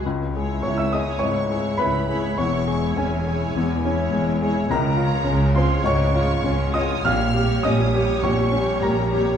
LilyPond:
<<
  \new Staff \with { instrumentName = "Violin section" } { \time 4/4 \key cis \minor \tempo 4 = 102 r4 cis'''16 e'''16 dis'''8 cis'''4 b''4 | cis'''4 gis''2~ gis''8 r8 | \key des \lydian bes''4. c'''8 des'''4. ees'''8 | f'''4 ees'''4 des'''4 bes''4 | }
  \new Staff \with { instrumentName = "Violin section" } { \time 4/4 \key cis \minor r8 cis''4 cis''4 cis''4 cis''8 | cis''8 cis''4 cis''4 cis''4 cis''8 | \key des \lydian r8 des''4 des''4 des''4 des''8 | des''8 des''4 des''4 des''4 des''8 | }
  \new Staff \with { instrumentName = "Grand piano" } { \time 4/4 \key cis \minor << { r4 <cis'' cis'''>16 <e'' e'''>16 <dis'' dis'''>8 <cis'' cis'''>4 <b' b''>4 | <cis'' cis'''>4 <gis' gis''>2~ <gis' gis''>8 r8 | \key des \lydian <bes' bes''>4. <c'' c'''>8 <des'' des'''>4. <ees'' ees'''>8 | <f'' f'''>4 <ees'' ees'''>4 <des'' des'''>4 <bes' bes''>4 | } \\ { cis,8 gis'8 e'8 gis'8 gis,8 gis'8 e'8 gis'8 | e,8 gis'8 cis'8 gis'8 e,8 cis'8 gis8 gis'8 | des,8 f'8 des'8 f'8 aes,8 f'8 des'8 f'8 | bes,,8 g'8 des'8 g'8 bes,,8 des'8 g8 g'8 | } >> }
  \new Staff \with { instrumentName = "Viola section" } { \time 4/4 \key cis \minor r8 <gis e'>4 <gis e'>4 <gis e'>4 <gis e'>8 | <gis e'>8 <gis e'>4 <gis e'>4 <gis e'>4 <gis e'>8 | \key des \lydian r8 <aes f'>4 <aes f'>4 <aes f'>4 <aes f'>8 | <g g'>8 <g g'>4 <g g'>4 <g g'>4 <g g'>8 | }
  \new Staff \with { instrumentName = "Cello section" } { \clef bass \time 4/4 \key cis \minor cis,4 cis,4 cis,4 cis,4 | e,4 e,4 e,4 e,4 | \key des \lydian des4 des4 des4 des4 | bes,4 bes,4 bes,4 bes,4 | }
  \new Staff \with { instrumentName = "Double bass section" } { \clef bass \time 4/4 \key cis \minor cis,4 cis,4 cis,4 cis,4 | e,,4 e,,4 e,,4 e,,4 | \key des \lydian des,4 des,4 des,4 des,4 | bes,,4 bes,,4 bes,,4 bes,,4 | }
>>